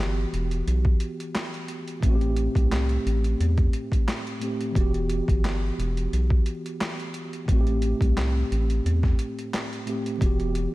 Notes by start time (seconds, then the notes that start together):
Already playing: G1 E3 B3 F#4 G4
0.33 E1, closed hi-hat
0.51 closed hi-hat
0.67 B1, closed hi-hat
0.85 kick
1.00 closed hi-hat
1.20 closed hi-hat
1.35 snare, clap, closed hi-hat
1.54 closed hi-hat
1.68 closed hi-hat
1.88 closed hi-hat
2.00 A1 A2 A3, kick, closed hi-hat
2.06 C4 F#4
2.15 G4
2.21 closed hi-hat
2.36 closed hi-hat
2.55 C2, kick, closed hi-hat
2.72 snare, clap, closed hi-hat
2.89 closed hi-hat
3.05 A1, closed hi-hat
3.24 closed hi-hat
3.40 E2, closed hi-hat
3.57 kick, closed hi-hat
3.73 closed hi-hat
3.92 kick, closed hi-hat
4.08 snare, clap, closed hi-hat
4.27 closed hi-hat
4.39 A2 A3 C4, closed hi-hat
4.44 G4
4.61 closed hi-hat
4.71 E3 B3, kick
4.76 E1 F#4, closed hi-hat
4.80 G4
4.94 closed hi-hat
5.09 closed hi-hat
5.28 G1, kick, closed hi-hat
5.45 snare, clap, closed hi-hat
5.78 E1, closed hi-hat
5.97 closed hi-hat
6.12 B1, closed hi-hat
6.30 kick
6.46 closed hi-hat
6.66 closed hi-hat
6.81 snare, clap, closed hi-hat
7.00 closed hi-hat
7.14 closed hi-hat
7.33 closed hi-hat
7.45 A1 A2 A3, kick, closed hi-hat
7.51 C4 F#4
7.61 G4
7.67 closed hi-hat
7.82 closed hi-hat
8.01 C2, kick, closed hi-hat
8.17 snare, clap, closed hi-hat
8.51 A1, closed hi-hat
8.70 closed hi-hat
8.85 E2, closed hi-hat
9.03 kick, snare
9.19 closed hi-hat
9.39 closed hi-hat
9.54 snare, clap, closed hi-hat
9.73 closed hi-hat
9.85 A2 A3 C4, closed hi-hat
9.89 G4
10.06 closed hi-hat
10.17 E3 B3, kick
10.21 E1 F#4, closed hi-hat
10.26 G4
10.40 closed hi-hat
10.55 closed hi-hat